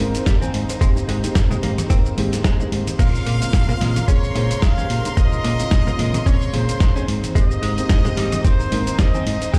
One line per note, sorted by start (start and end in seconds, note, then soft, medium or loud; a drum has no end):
0.00 0.14 G#2 medium
0.00 0.38 D#3 loud
0.00 0.38 G#3 loud
0.00 0.38 A#3 medium
0.00 0.38 C4 medium
0.00 2.95 D#4 medium
0.00 0.38 A#4 loud
0.00 2.95 C5 medium
0.00 open hi-hat loud
0.00 high bongo medium
0.14 muted fingered electric bass stroke soft
0.14 closed hi-hat medium
0.14 shaker medium
0.26 0.36 G#1 loud
0.26 0.34 G3 medium
0.26 kick loud
0.26 snare loud
0.26 closed hi-hat medium
0.26 shaker medium
0.41 0.78 D#3 medium
0.41 0.78 A#3 medium
0.41 0.51 C4 medium
0.41 0.78 C4 medium
0.41 0.78 G#5 medium
0.41 high conga medium
0.41 shaker soft
0.54 0.63 G#2 loud
0.54 open hi-hat loud
0.69 closed hi-hat medium
0.69 high bongo medium
0.69 shaker medium
0.81 0.99 G#1 loud
0.81 1.20 D#3 medium
0.81 0.89 G#3 loud
0.81 1.20 A#3 medium
0.81 1.20 C4 medium
0.81 1.20 G4 loud
0.81 kick loud
0.81 closed hi-hat medium
0.81 shaker medium
0.96 high bongo medium
0.96 shaker soft
1.08 1.23 G#2 medium
1.08 1.16 G#3 medium
1.08 open hi-hat loud
1.08 high bongo medium
1.23 1.47 D#3 medium
1.23 1.47 G#3 medium
1.23 1.47 A#3 medium
1.23 1.47 C4 medium
1.23 1.47 G4 medium
1.23 muted fingered electric bass stroke soft
1.23 closed hi-hat medium
1.23 shaker medium
1.35 1.45 G#1 loud
1.35 1.40 G#2 loud
1.35 kick loud
1.35 snare loud
1.35 closed hi-hat medium
1.35 shaker medium
1.50 1.87 D#3 medium
1.50 1.87 G#3 medium
1.50 1.54 G#3 loud
1.50 1.87 A#3 medium
1.50 1.87 C4 medium
1.50 1.87 G4 medium
1.50 low conga medium
1.50 shaker soft
1.63 1.81 G#2 medium
1.63 1.70 A#3 medium
1.63 open hi-hat loud
1.63 high conga medium
1.78 cross-stick medium
1.78 closed hi-hat medium
1.78 high conga medium
1.78 shaker medium
1.89 2.08 G#1 medium
1.89 2.14 D#3 loud
1.89 2.14 G#3 medium
1.89 2.14 A#3 medium
1.89 1.98 C4 loud
1.89 2.15 C4 medium
1.89 2.15 A#4 loud
1.89 kick loud
1.89 closed hi-hat medium
1.89 shaker medium
2.06 shaker soft
2.17 2.46 G#2 medium
2.17 2.29 D#3 loud
2.17 2.29 G#3 loud
2.17 2.29 A#3 loud
2.17 2.29 C4 loud
2.17 2.29 G4 loud
2.17 open hi-hat loud
2.17 high conga medium
2.32 2.49 D#3 medium
2.32 2.49 G#3 medium
2.32 2.49 A#3 medium
2.32 2.49 C4 medium
2.32 2.49 G4 medium
2.32 snare soft
2.32 closed hi-hat medium
2.32 shaker medium
2.44 2.54 G#1 medium
2.44 2.56 G#3 loud
2.44 kick loud
2.44 snare loud
2.44 closed hi-hat medium
2.44 shaker medium
2.59 2.96 D#3 medium
2.59 2.96 G#3 medium
2.59 2.69 G#3 medium
2.59 2.96 A#3 medium
2.59 2.97 C4 medium
2.59 2.97 G4 loud
2.59 high bongo medium
2.59 shaker soft
2.72 2.81 G#2 medium
2.72 open hi-hat loud
2.87 closed hi-hat medium
2.87 high conga medium
2.87 shaker medium
2.99 3.17 A#1 loud
2.99 3.38 C#3 medium
2.99 3.38 G#3 medium
2.99 3.07 A#3 loud
2.99 3.38 A#3 medium
2.99 3.38 C4 medium
2.99 3.38 F4 medium
2.99 7.04 A#4 medium
2.99 4.04 F5 loud
2.99 7.04 C6 loud
2.99 kick loud
2.99 closed hi-hat medium
2.99 crash medium
2.99 shaker medium
3.15 shaker soft
3.26 3.41 A#2 medium
3.26 3.34 A#3 medium
3.26 open hi-hat loud
3.41 3.65 C#3 medium
3.41 3.65 G#3 medium
3.41 3.65 A#3 medium
3.41 3.65 C4 medium
3.41 3.66 F4 medium
3.41 muted fingered electric bass stroke soft
3.41 closed hi-hat medium
3.41 shaker medium
3.53 3.63 A#1 medium
3.53 3.58 A#2 loud
3.53 kick loud
3.53 snare loud
3.53 closed hi-hat medium
3.53 shaker medium
3.69 4.05 C#3 medium
3.69 4.05 G#3 medium
3.69 3.73 A#3 loud
3.69 4.06 A#3 medium
3.69 4.06 C4 medium
3.69 4.06 F4 medium
3.69 low conga loud
3.69 shaker soft
3.81 3.99 A#2 medium
3.81 3.92 G#3 loud
3.81 snare soft
3.81 open hi-hat loud
3.81 high conga medium
3.96 cross-stick medium
3.96 closed hi-hat medium
3.96 high conga loud
3.96 shaker medium
4.08 4.26 A#1 medium
4.08 4.33 C#3 loud
4.08 4.33 G#3 medium
4.08 4.33 A#3 medium
4.08 4.33 C4 medium
4.08 4.16 C#4 loud
4.08 4.33 G#4 loud
4.08 4.63 C#5 loud
4.08 kick loud
4.08 closed hi-hat medium
4.08 shaker medium
4.24 shaker soft
4.35 4.50 A#2 medium
4.35 4.74 C#3 loud
4.35 4.74 G#3 medium
4.35 4.74 A#3 medium
4.35 4.75 G#4 loud
4.35 4.75 C5 medium
4.35 open hi-hat loud
4.35 high bongo medium
4.51 muted fingered electric bass stroke soft
4.51 closed hi-hat medium
4.51 shaker medium
4.62 4.72 A#1 loud
4.62 4.70 G#3 medium
4.62 5.14 F5 loud
4.62 kick loud
4.62 snare loud
4.62 closed hi-hat medium
4.62 shaker medium
4.77 5.14 C#3 medium
4.77 5.14 G#3 medium
4.77 5.14 A#3 medium
4.77 4.87 C#4 medium
4.77 5.15 G4 medium
4.77 5.15 C5 medium
4.77 high conga medium
4.77 shaker soft
4.90 4.99 A#2 loud
4.90 open hi-hat loud
5.05 closed hi-hat medium
5.05 high bongo medium
5.05 shaker medium
5.16 5.35 A#1 loud
5.16 5.56 C#3 medium
5.16 5.56 G#3 medium
5.16 5.25 A#3 loud
5.16 5.56 A#3 medium
5.16 5.56 F4 loud
5.16 5.56 C5 medium
5.16 6.27 D#5 loud
5.16 kick loud
5.16 closed hi-hat medium
5.16 shaker medium
5.32 high bongo medium
5.32 shaker soft
5.44 5.59 A#2 medium
5.44 5.52 A#3 medium
5.44 open hi-hat loud
5.44 high bongo medium
5.59 5.83 C#3 medium
5.59 5.83 G#3 medium
5.59 5.83 A#3 medium
5.59 5.83 C4 medium
5.59 5.84 F4 medium
5.59 muted fingered electric bass stroke soft
5.59 closed hi-hat medium
5.59 shaker medium
5.71 5.81 A#1 loud
5.71 5.76 A#2 loud
5.71 kick loud
5.71 snare loud
5.71 closed hi-hat medium
5.71 shaker medium
5.86 6.23 C#3 medium
5.86 6.23 G#3 medium
5.86 6.23 A#3 medium
5.86 5.91 A#3 loud
5.86 6.24 C4 medium
5.86 6.24 F4 medium
5.86 low conga medium
5.86 shaker soft
5.99 6.17 A#2 medium
5.99 6.10 G#3 loud
5.99 open hi-hat loud
5.99 high conga medium
6.14 cross-stick medium
6.14 closed hi-hat medium
6.14 high conga loud
6.14 shaker medium
6.25 6.44 A#1 medium
6.25 6.50 C#3 loud
6.25 6.50 G#3 medium
6.25 6.51 A#3 medium
6.25 6.51 C4 medium
6.25 6.34 C#4 loud
6.25 6.51 G#4 loud
6.25 6.54 C#5 loud
6.25 kick loud
6.25 closed hi-hat medium
6.25 shaker medium
6.42 shaker soft
6.53 6.68 A#2 medium
6.53 6.92 C#3 loud
6.53 6.92 G#3 loud
6.53 6.92 A#3 loud
6.53 6.93 G#4 loud
6.53 6.93 C5 medium
6.53 7.09 C5 medium
6.53 open hi-hat loud
6.53 high conga medium
6.69 muted fingered electric bass stroke soft
6.69 closed hi-hat medium
6.69 shaker medium
6.80 6.90 A#1 loud
6.80 6.89 G#3 medium
6.80 kick loud
6.80 snare loud
6.80 closed hi-hat medium
6.80 shaker medium
6.95 7.32 D#3 medium
6.95 7.33 G#3 medium
6.95 7.33 A#3 medium
6.95 7.33 C4 medium
6.95 7.05 C#4 medium
6.95 7.33 G#4 medium
6.95 high bongo medium
6.95 shaker soft
7.08 7.18 G#2 loud
7.08 9.59 D#4 medium
7.08 9.59 C5 loud
7.08 open hi-hat loud
7.24 closed hi-hat medium
7.24 high conga medium
7.24 shaker medium
7.35 7.54 G#1 loud
7.35 7.74 D#3 medium
7.35 7.74 G#3 medium
7.35 7.43 G#3 loud
7.35 7.74 A#3 medium
7.35 7.74 C4 medium
7.35 7.75 G4 loud
7.35 8.41 D#5 loud
7.35 kick loud
7.35 closed hi-hat medium
7.35 shaker medium
7.51 shaker soft
7.63 7.77 G#2 medium
7.63 7.70 G#3 medium
7.63 open hi-hat loud
7.77 8.01 D#3 medium
7.77 8.02 G#3 medium
7.77 8.02 A#3 medium
7.77 8.02 C4 medium
7.77 8.02 G4 loud
7.77 muted fingered electric bass stroke soft
7.77 closed hi-hat medium
7.77 shaker medium
7.89 7.99 G#1 loud
7.89 7.95 G#2 loud
7.89 kick loud
7.89 snare loud
7.89 closed hi-hat medium
7.89 shaker medium
8.05 8.42 D#3 medium
8.05 8.09 G#3 loud
8.05 8.42 G#3 medium
8.05 8.42 A#3 medium
8.05 8.42 C4 medium
8.05 8.42 G4 medium
8.05 low conga medium
8.05 shaker soft
8.17 8.35 G#2 medium
8.17 8.29 G3 loud
8.17 snare soft
8.17 open hi-hat loud
8.17 high conga medium
8.32 cross-stick medium
8.32 closed hi-hat medium
8.32 high conga loud
8.32 shaker medium
8.44 8.63 G#1 medium
8.44 8.69 D#3 loud
8.44 8.69 G#3 medium
8.44 8.69 A#3 medium
8.44 8.52 C4 loud
8.44 8.69 C4 medium
8.44 8.69 A#4 loud
8.44 8.99 C5 medium
8.44 kick loud
8.44 closed hi-hat medium
8.44 shaker medium
8.60 shaker soft
8.72 8.86 G#2 medium
8.72 9.11 D#3 loud
8.72 9.11 A#3 loud
8.72 9.11 C4 loud
8.72 9.11 A#4 loud
8.72 open hi-hat loud
8.72 high bongo medium
8.87 muted fingered electric bass stroke soft
8.87 closed hi-hat medium
8.87 shaker medium
8.99 9.09 G#1 loud
8.99 9.07 G3 medium
8.99 9.54 D#5 loud
8.99 kick loud
8.99 snare loud
8.99 closed hi-hat medium
8.99 shaker medium
9.14 9.51 D#3 medium
9.14 9.51 A#3 medium
9.14 9.51 C4 medium
9.14 9.24 C4 medium
9.14 9.51 G#5 medium
9.14 high conga medium
9.14 shaker soft
9.26 9.36 G#2 loud
9.26 open hi-hat loud
9.41 closed hi-hat medium
9.41 high bongo medium
9.41 shaker medium
9.53 9.59 G#1 loud
9.53 9.59 D#3 medium
9.53 9.59 G#3 loud
9.53 9.59 A#3 medium
9.53 9.59 C4 medium
9.53 9.59 G4 loud
9.53 9.59 G5 loud
9.53 kick loud
9.53 closed hi-hat medium
9.53 shaker medium